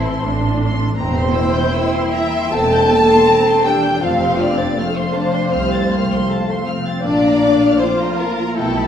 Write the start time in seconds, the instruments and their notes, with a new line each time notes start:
Already playing: double bass section A1, cello section A2, harp A2 E3, french horn section E3, viola section C4, clarinet C4, violin section E4 C6, flute A5
0.00 harp A3
0.23 double bass section A1, cello section A2, viola section D4, harp C5
0.49 harp A3
0.61 violin section C6
0.73 harp E3
0.97 double bass section E1, harp E2, cello section E2, clarinet A#3, french horn section C4, viola section C4, violin section C5 A#5, flute G5
1.16 violin section C6
1.24 harp E3
1.34 viola section E4, violin section E6
1.48 harp G3
1.53 violin section G6
1.72 harp A#4, violin section E6
1.93 violin section C6
2.00 harp G3
2.12 french horn section E4, violin section E5 A#5
2.26 harp E3
2.30 violin section C6
2.51 double bass section E1, cello section E2, harp E2, viola section C4, french horn section A4, violin section A5 E6
2.72 violin section G6
2.78 harp G3
2.91 viola section A#3, violin section E6
3.03 harp E3
3.10 violin section C6
3.27 viola section C4, harp A#4, violin section A#5
3.45 violin section C6
3.52 harp G3
3.63 viola section D4, french horn section G4, violin section G5 E6
3.76 harp E3
3.82 violin section G6
4.00 double bass section F1, harp F2, cello section F2, clarinet A3, viola section C4, french horn section F4, flute F5, violin section F5 A5
4.21 violin section C6
4.26 harp C3
4.37 french horn section D4, violin section F6
4.41 violin section D5
4.52 harp F3
4.57 violin section A6
4.77 viola section A3, french horn section C4, harp A4, violin section C5 F6
4.96 violin section C6
5.02 harp F3
5.15 viola section D4, violin section A5
5.27 harp C3
5.33 violin section C6
5.52 double bass section C2, cello section C2, harp F2, viola section C4, violin section F6
5.73 violin section A6
5.78 harp F3
5.90 viola section A#3, violin section F6
6.02 harp C3
6.12 violin section C6
6.28 viola section A3, harp A4, violin section A5
6.49 harp F3, violin section C6
6.65 viola section C4, violin section F6
6.79 harp C3
6.87 violin section A6
7.03 double bass section A#1, cello section A#2, harp A#2, viola section D4, french horn section D4, violin section D5 A5
7.25 harp A#3, violin section A#5
7.42 viola section D4, violin section D6
7.54 harp F3
7.62 violin section F6
7.78 french horn section C4, viola section F4, harp A4, violin section C5 D6
8.01 violin section A#5
8.06 harp F3
8.17 french horn section A#3, violin section A#4 A5
8.31 harp A#3
8.38 violin section A#5
8.56 double bass section B1, cello section B2, harp B2, clarinet G3, french horn section A3, viola section E4, violin section A4 G5, flute G5
8.78 violin section B5
8.84 harp F3